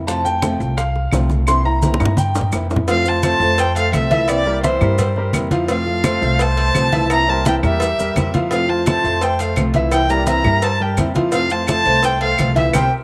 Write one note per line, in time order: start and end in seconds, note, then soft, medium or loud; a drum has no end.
0.00 0.54 F2 loud
0.07 0.24 C3 medium
0.07 0.24 F3 medium
0.07 0.25 A3 medium
0.07 0.24 C4 medium
0.07 0.23 F4 medium
0.07 0.24 A5 medium
0.07 high bongo medium
0.07 high conga soft
0.07 maracas medium
0.24 0.42 A3 soft
0.24 0.42 C4 soft
0.24 0.41 F4 medium
0.24 0.74 G5 loud
0.24 high bongo soft
0.24 high conga soft
0.24 maracas medium
0.42 0.59 C3 medium
0.42 0.59 F3 medium
0.42 0.59 A3 medium
0.42 0.60 C4 medium
0.42 0.59 F4 medium
0.42 high bongo medium
0.42 high conga loud
0.42 claves medium
0.42 maracas medium
0.60 1.09 C2 loud
0.60 0.76 A3 soft
0.60 0.76 C4 soft
0.60 0.76 F4 soft
0.60 high conga soft
0.60 maracas soft
0.76 1.10 F5 medium
0.76 muted nylon-string guitar stroke medium
0.76 high bongo medium
0.76 high conga soft
0.76 maracas medium
0.95 high bongo soft
0.95 high conga soft
1.12 1.94 C2 loud
1.12 1.29 C3 medium
1.12 1.29 F3 medium
1.12 1.29 A3 medium
1.12 1.29 C4 medium
1.12 1.28 F4 medium
1.12 high bongo soft
1.12 low bongo medium
1.12 high conga medium
1.12 claves medium
1.12 maracas medium
1.29 1.47 A3 soft
1.29 1.47 C4 soft
1.29 1.46 F4 medium
1.29 high bongo soft
1.29 high conga medium
1.29 maracas soft
1.47 1.64 C3 medium
1.47 1.64 E3 medium
1.47 1.64 A#3 medium
1.47 1.65 C4 medium
1.47 1.63 E4 medium
1.47 1.65 C6 loud
1.47 high bongo medium
1.47 high conga soft
1.47 claves medium
1.47 maracas medium
1.65 1.82 A#3 soft
1.65 1.82 C4 soft
1.65 1.82 E4 medium
1.65 2.14 A#5 loud
1.65 high conga soft
1.82 1.99 C3 medium
1.82 2.00 E3 medium
1.82 2.00 A#3 medium
1.82 2.00 C4 medium
1.82 1.98 E4 medium
1.82 high bongo medium
1.82 high conga loud
1.82 maracas medium
1.94 high conga medium
2.00 2.49 G2 loud
2.00 2.17 A#3 soft
2.00 2.17 C4 soft
2.00 2.17 E4 medium
2.00 low bongo medium
2.00 claves medium
2.00 maracas soft
2.05 low conga medium
2.17 2.50 G5 medium
2.17 muted nylon-string guitar stroke medium
2.17 high conga loud
2.17 maracas medium
2.35 low bongo loud
2.35 maracas medium
2.41 low conga medium
2.52 3.35 F2 medium
2.52 2.69 C3 medium
2.52 2.70 E3 medium
2.52 2.70 A#3 medium
2.52 2.70 C4 medium
2.52 2.69 E4 medium
2.52 low bongo medium
2.52 claves medium
2.52 maracas medium
2.70 2.88 A#3 soft
2.70 2.88 C4 soft
2.70 2.87 E4 medium
2.70 low bongo medium
2.70 maracas soft
2.76 low conga loud
2.87 3.04 C3 medium
2.87 3.05 F3 medium
2.87 3.17 F3 medium
2.87 3.05 A3 medium
2.87 3.05 C4 medium
2.87 3.17 F4 medium
2.87 3.04 F4 medium
2.87 3.08 A4 medium
2.87 3.17 F5 medium
2.87 3.10 F5 loud
2.87 cowbell loud
2.87 high conga soft
2.87 maracas medium
3.05 3.23 A3 soft
3.05 3.23 C4 soft
3.05 3.22 F4 medium
3.05 3.24 C5 medium
3.05 3.24 A5 loud
3.05 high conga soft
3.05 maracas medium
3.23 3.40 C3 medium
3.23 3.40 F3 medium
3.23 3.38 A3 medium
3.23 3.40 A3 medium
3.23 3.40 C4 medium
3.23 3.39 F4 medium
3.23 3.38 A4 medium
3.23 3.58 C5 medium
3.23 3.38 C5 medium
3.23 3.61 A5 loud
3.23 cowbell medium
3.23 high conga loud
3.23 claves medium
3.23 maracas medium
3.40 3.89 F2 loud
3.40 3.70 A3 medium
3.40 3.57 A3 soft
3.40 3.58 C4 soft
3.40 3.57 F4 soft
3.40 3.70 A4 medium
3.40 3.70 C5 medium
3.40 high conga soft
3.40 maracas soft
3.58 3.75 C5 medium
3.58 3.76 G5 loud
3.58 muted nylon-string guitar stroke medium
3.58 cowbell loud
3.58 high conga soft
3.58 maracas medium
3.75 4.04 A3 medium
3.75 3.92 A4 medium
3.75 4.05 A4 medium
3.75 4.05 C5 medium
3.75 3.93 F5 loud
3.75 cowbell medium
3.75 high conga soft
3.75 maracas medium
3.92 4.75 C2 medium
3.92 4.10 C3 medium
3.92 4.10 F3 medium
3.92 4.10 A3 medium
3.92 4.10 C4 medium
3.92 4.09 F4 medium
3.92 4.30 A4 medium
3.92 4.31 E5 medium
3.92 cowbell medium
3.92 high conga medium
3.92 claves medium
3.92 maracas medium
4.10 4.40 E3 medium
4.10 4.29 A3 soft
4.10 4.28 C4 soft
4.10 4.40 E4 medium
4.10 4.27 F4 medium
4.10 4.40 E5 loud
4.10 cowbell medium
4.10 high conga medium
4.10 maracas soft
4.28 4.45 C3 medium
4.28 4.46 E3 medium
4.28 4.46 A#3 medium
4.28 4.46 C4 medium
4.28 4.44 E4 medium
4.28 4.63 G4 medium
4.28 4.63 D5 loud
4.28 cowbell loud
4.28 high conga soft
4.28 claves medium
4.28 maracas medium
4.45 4.60 G3 medium
4.45 4.62 A#3 soft
4.45 4.63 C4 medium
4.45 4.63 E4 medium
4.45 4.60 G4 medium
4.45 4.61 A#4 medium
4.45 high conga soft
4.62 4.80 C3 medium
4.62 4.80 E3 medium
4.62 4.78 E3 medium
4.62 4.80 A#3 medium
4.62 4.81 C4 medium
4.62 4.78 E4 medium
4.62 5.30 E4 medium
4.62 4.79 E4 medium
4.62 5.30 C5 medium
4.62 4.78 E5 medium
4.62 cowbell medium
4.62 high conga loud
4.62 maracas medium
4.80 5.30 G2 loud
4.80 5.10 G3 medium
4.80 4.97 A#3 soft
4.80 4.98 C4 soft
4.80 4.98 E4 soft
4.80 5.10 G4 medium
4.80 5.10 A#4 medium
4.80 high conga soft
4.80 low conga medium
4.80 claves medium
4.80 maracas soft
4.98 muted nylon-string guitar stroke medium
4.98 cowbell loud
4.98 high conga soft
4.98 low conga medium
4.98 maracas medium
5.16 5.46 G3 medium
5.16 5.46 G4 medium
5.16 5.46 A#4 medium
5.16 high conga soft
5.33 6.16 F2 medium
5.33 5.51 C3 medium
5.33 5.51 E3 medium
5.33 5.51 A#3 medium
5.33 5.51 C4 medium
5.33 5.50 E4 medium
5.33 cowbell medium
5.33 high conga medium
5.33 claves medium
5.33 maracas medium
5.51 5.66 F3 loud
5.51 5.69 A#3 soft
5.51 5.68 C4 soft
5.51 5.68 E4 soft
5.51 5.66 F4 loud
5.51 5.67 F5 loud
5.51 cowbell medium
5.51 high conga medium
5.51 maracas soft
5.68 5.85 C3 medium
5.68 5.86 F3 medium
5.68 5.98 F3 medium
5.68 5.86 A3 medium
5.68 5.86 C4 medium
5.68 5.98 F4 medium
5.68 5.85 F4 medium
5.68 6.42 A4 medium
5.68 5.98 F5 medium
5.68 6.43 F5 loud
5.68 cowbell loud
5.68 high conga soft
5.68 maracas medium
5.86 6.03 A3 soft
5.86 6.04 C4 soft
5.86 6.03 F4 medium
5.86 high conga soft
6.04 6.21 C3 medium
6.04 6.21 F3 medium
6.04 6.19 A3 medium
6.04 6.22 A3 medium
6.04 6.21 C4 medium
6.04 6.20 F4 medium
6.04 6.19 A4 medium
6.04 6.19 C5 medium
6.04 cowbell medium
6.04 high conga loud
6.04 claves medium
6.04 maracas medium
6.21 6.71 C2 loud
6.21 6.51 A3 medium
6.21 6.39 A3 soft
6.21 6.39 C4 medium
6.21 6.39 F4 medium
6.21 6.51 A4 medium
6.21 6.51 C5 medium
6.21 high conga soft
6.21 maracas soft
6.39 7.11 C5 loud
6.39 7.11 A5 loud
6.39 muted nylon-string guitar stroke medium
6.39 cowbell loud
6.39 high conga soft
6.39 maracas medium
6.57 6.86 A3 medium
6.57 6.86 A4 medium
6.57 6.86 C5 medium
6.57 cowbell medium
6.57 high conga soft
6.74 7.57 C2 medium
6.74 6.92 C3 medium
6.74 6.92 F3 medium
6.74 6.92 A3 medium
6.74 6.92 C4 medium
6.74 6.91 F4 medium
6.74 cowbell medium
6.74 high conga medium
6.74 claves medium
6.74 maracas medium
6.92 7.21 E3 loud
6.92 7.11 A3 soft
6.92 7.10 C4 soft
6.92 7.21 E4 medium
6.92 7.10 F4 medium
6.92 7.22 E5 loud
6.92 cowbell medium
6.92 high conga medium
6.92 maracas soft
7.10 7.27 C3 medium
7.10 7.27 E3 medium
7.10 7.28 A#3 medium
7.10 7.27 C4 medium
7.10 7.26 E4 medium
7.10 7.31 E5 loud
7.10 7.31 A#5 loud
7.10 cowbell loud
7.10 high conga soft
7.10 claves medium
7.10 maracas medium
7.27 7.43 G3 medium
7.27 7.45 A#3 soft
7.27 7.45 C4 soft
7.27 7.45 E4 medium
7.27 7.43 G4 medium
7.27 7.43 A#4 medium
7.27 7.45 C5 medium
7.27 7.46 A5 loud
7.27 high conga soft
7.44 7.62 C3 medium
7.44 7.62 E3 medium
7.44 7.60 E3 medium
7.44 7.63 A#3 medium
7.44 7.62 C4 medium
7.44 7.60 E4 medium
7.44 7.61 E4 medium
7.44 7.52 A#4 medium
7.44 7.61 E5 medium
7.44 7.55 G5 loud
7.44 cowbell medium
7.44 high conga loud
7.44 maracas medium
7.63 7.96 E2 loud
7.63 7.92 G3 medium
7.63 7.80 A#3 soft
7.63 7.80 C4 soft
7.63 7.80 E4 medium
7.63 8.30 G4 medium
7.63 7.92 G4 medium
7.63 7.92 A#4 medium
7.63 8.30 E5 loud
7.63 high conga soft
7.63 low conga medium
7.63 claves medium
7.63 maracas soft
7.80 muted nylon-string guitar stroke medium
7.80 cowbell loud
7.80 high conga soft
7.80 maracas medium
7.98 8.15 E2 medium
7.98 8.28 G3 medium
7.98 8.28 G4 medium
7.98 8.28 A#4 medium
7.98 high conga soft
7.98 maracas medium
8.15 8.99 F2 medium
8.15 8.33 C3 medium
8.15 8.33 E3 medium
8.15 8.33 A#3 medium
8.15 8.33 C4 medium
8.15 8.32 E4 medium
8.15 cowbell medium
8.15 high conga medium
8.15 claves medium
8.15 maracas medium
8.33 8.49 F3 loud
8.33 8.51 A#3 soft
8.33 8.51 C4 soft
8.33 8.50 E4 medium
8.33 8.49 F4 medium
8.33 8.49 F5 medium
8.33 cowbell medium
8.33 high conga medium
8.33 maracas soft
8.50 8.68 C3 medium
8.50 8.68 F3 medium
8.50 8.80 F3 medium
8.50 8.68 A3 medium
8.50 8.68 C4 medium
8.50 8.81 F4 medium
8.50 8.67 F4 medium
8.50 8.70 A4 medium
8.50 8.71 F5 medium
8.50 8.81 F5 medium
8.50 cowbell loud
8.50 high conga soft
8.50 maracas medium
8.68 8.86 A3 soft
8.68 8.86 C4 soft
8.68 8.85 F4 soft
8.68 8.87 C5 medium
8.68 8.87 A5 medium
8.68 high conga soft
8.86 9.03 C3 medium
8.86 9.04 F3 medium
8.86 9.02 A3 medium
8.86 9.04 A3 medium
8.86 9.04 C4 medium
8.86 9.02 F4 medium
8.86 9.02 A4 medium
8.86 9.22 C5 medium
8.86 9.02 C5 medium
8.86 9.25 A5 loud
8.86 cowbell medium
8.86 high conga loud
8.86 claves medium
8.86 maracas medium
9.04 9.53 F2 loud
9.04 9.33 A3 medium
9.04 9.21 A3 soft
9.04 9.21 C4 soft
9.04 9.21 F4 medium
9.04 9.33 A4 medium
9.04 9.34 C5 medium
9.04 high conga soft
9.04 maracas soft
9.21 9.42 C5 medium
9.21 9.42 G5 medium
9.21 muted nylon-string guitar stroke medium
9.21 cowbell loud
9.21 high conga soft
9.21 maracas medium
9.39 9.69 A3 medium
9.39 9.69 A4 medium
9.39 9.58 A4 medium
9.39 9.69 C5 medium
9.39 9.58 F5 medium
9.39 cowbell medium
9.39 high conga soft
9.39 maracas medium
9.56 10.40 C2 medium
9.56 9.74 C3 medium
9.56 9.74 F3 medium
9.56 9.74 A3 medium
9.56 9.74 C4 medium
9.56 9.73 F4 medium
9.56 cowbell medium
9.56 high conga medium
9.56 claves medium
9.56 maracas medium
9.74 10.04 E3 medium
9.74 9.93 A3 soft
9.74 9.92 C4 soft
9.74 10.04 E4 loud
9.74 9.92 F4 medium
9.74 10.04 E5 loud
9.74 cowbell medium
9.74 high conga medium
9.74 maracas soft
9.91 10.09 C3 medium
9.91 10.09 E3 medium
9.91 10.10 A#3 medium
9.91 10.09 C4 medium
9.91 10.08 E4 medium
9.91 10.12 A#4 medium
9.91 10.12 G5 loud
9.91 cowbell loud
9.91 high conga soft
9.91 claves medium
9.91 maracas medium
10.09 10.24 G3 medium
10.09 10.27 A#3 soft
10.09 10.27 C4 soft
10.09 10.27 E4 medium
10.09 10.24 G4 medium
10.09 10.25 A#4 medium
10.09 10.27 D5 medium
10.09 10.27 A#5 loud
10.09 high conga soft
10.09 maracas medium
10.27 10.44 C3 medium
10.27 10.42 E3 medium
10.27 10.45 E3 medium
10.27 10.45 A#3 medium
10.27 10.44 C4 medium
10.27 10.42 E4 medium
10.27 10.64 E5 medium
10.27 10.42 E5 medium
10.27 10.65 A#5 loud
10.27 cowbell medium
10.27 high conga medium
10.27 maracas medium
10.43 10.95 G2 loud
10.43 10.74 G3 medium
10.43 10.62 A#3 soft
10.43 10.62 C4 soft
10.43 10.61 E4 medium
10.43 10.74 G4 medium
10.43 10.74 A#4 medium
10.43 high conga soft
10.43 low conga medium
10.43 claves medium
10.43 maracas soft
10.62 10.82 C5 medium
10.62 10.83 A5 loud
10.62 muted nylon-string guitar stroke medium
10.62 cowbell loud
10.62 high conga soft
10.62 maracas medium
10.80 11.09 G3 medium
10.80 11.09 G4 medium
10.80 10.98 A#4 medium
10.80 11.10 A#4 medium
10.80 10.99 G5 medium
10.80 high conga soft
10.97 11.80 F2 medium
10.97 11.14 C3 medium
10.97 11.15 E3 medium
10.97 11.15 A#3 medium
10.97 11.14 C4 medium
10.97 11.13 E4 medium
10.97 cowbell medium
10.97 high conga medium
10.97 claves medium
10.97 maracas medium
11.15 11.30 F3 loud
11.15 11.33 A#3 soft
11.15 11.33 C4 soft
11.15 11.32 E4 medium
11.15 11.30 F4 loud
11.15 11.30 F5 medium
11.15 cowbell medium
11.15 high conga medium
11.15 maracas soft
11.32 11.50 C3 medium
11.32 11.61 F3 medium
11.32 11.50 F3 medium
11.32 11.50 A3 medium
11.32 11.50 C4 medium
11.32 11.62 F4 medium
11.32 11.49 F4 medium
11.32 11.52 A4 medium
11.32 11.62 F5 medium
11.32 11.53 F5 loud
11.32 cowbell loud
11.32 high conga soft
11.32 maracas medium
11.50 11.67 A3 soft
11.50 11.68 C4 soft
11.50 11.68 F4 medium
11.50 11.68 C5 medium
11.50 11.68 A5 loud
11.50 high conga soft
11.50 maracas medium
11.67 11.85 C3 medium
11.67 11.85 F3 medium
11.67 11.83 A3 medium
11.67 11.86 A3 medium
11.67 11.86 C4 medium
11.67 11.84 F4 medium
11.67 11.83 A4 medium
11.67 11.83 C5 medium
11.67 12.03 C5 medium
11.67 12.06 A5 loud
11.67 cowbell medium
11.67 high conga loud
11.67 claves medium
11.67 maracas medium
11.85 12.35 C2 loud
11.85 12.15 A3 medium
11.85 12.02 A3 soft
11.85 12.03 C4 medium
11.85 12.03 F4 medium
11.85 12.15 A4 medium
11.85 12.15 C5 medium
11.85 high conga soft
11.85 maracas soft
12.03 12.19 C5 medium
12.03 12.21 G5 loud
12.03 muted nylon-string guitar stroke medium
12.03 cowbell loud
12.03 high conga soft
12.03 maracas medium
12.20 12.50 A3 medium
12.20 12.53 A4 medium
12.20 12.50 A4 medium
12.20 12.50 C5 medium
12.20 12.54 F5 loud
12.20 cowbell medium
12.20 high conga soft
12.38 12.72 C2 loud
12.38 12.56 C3 medium
12.38 12.56 F3 medium
12.38 12.56 A3 medium
12.38 12.56 C4 medium
12.38 12.55 F4 medium
12.38 cowbell medium
12.38 high conga medium
12.38 claves medium
12.38 maracas medium
12.55 12.70 E3 loud
12.55 12.74 A3 soft
12.55 12.73 C4 soft
12.55 12.70 E4 medium
12.55 12.73 F4 soft
12.55 12.72 G4 medium
12.55 12.71 E5 medium
12.55 12.74 E5 medium
12.55 cowbell medium
12.55 high conga medium
12.55 maracas soft
12.73 12.87 C2 medium
12.73 12.85 G3 loud
12.73 12.86 A#3 loud
12.73 12.86 C4 loud
12.73 12.85 G4 loud
12.73 12.85 A#4 loud
12.73 12.85 C5 loud
12.73 12.85 G5 loud
12.73 cowbell loud
12.73 high conga loud
12.73 claves loud
12.73 maracas loud